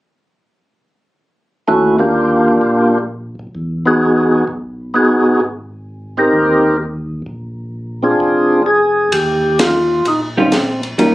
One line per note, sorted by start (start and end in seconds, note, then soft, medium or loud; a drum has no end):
1.68 2.58 D#2 medium
1.68 1.96 A3 medium
1.68 1.97 C#4 soft
1.68 1.97 E4 soft
1.68 1.97 F#4 medium
1.99 2.98 A#3 medium
1.99 2.99 D4 soft
1.99 2.99 F4 soft
1.99 2.99 G4 medium
2.61 3.35 A#1 medium
3.39 3.47 A#1 soft
3.55 4.44 E2 medium
3.85 4.44 B3 medium
3.85 4.45 D#4 medium
3.85 4.45 F#4 medium
3.85 4.45 G#4 medium
4.47 5.21 B1 medium
4.94 5.40 B3 medium
4.94 5.41 D#4 medium
4.94 5.41 F#4 medium
4.94 5.41 G#4 medium
5.25 5.33 B1 soft
5.40 6.29 G#1 medium
6.17 6.76 C4 medium
6.17 6.77 D#4 soft
6.17 6.77 G4 soft
6.17 6.77 A#4 medium
6.33 7.22 D#2 medium
7.26 8.15 A#1 medium
8.03 8.62 C4 medium
8.03 8.62 D4 soft
8.03 8.63 F4 soft
8.03 8.63 G#4 medium
8.20 9.09 F1 medium
8.66 9.14 G#4 medium
9.12 10.01 D#2 medium
9.12 9.60 G4 medium
9.12 ride medium
9.59 10.07 F4 medium
9.59 snare medium
9.59 hi-hat pedal soft
9.59 ride medium
10.05 10.94 A#1 medium
10.05 10.22 D#4 medium
10.05 ride medium
10.37 10.51 D#3 medium
10.37 10.51 G3 medium
10.37 10.81 C4 medium
10.37 10.51 C#4 medium
10.37 10.51 F4 medium
10.52 snare medium
10.52 hi-hat pedal medium
10.52 ride medium
10.83 ride soft
10.98 11.15 D#2 medium
10.98 11.15 D#3 medium
10.98 11.15 G3 medium
10.98 11.15 A#3 loud
10.98 11.15 C#4 medium
10.98 11.15 F4 medium
10.98 ride medium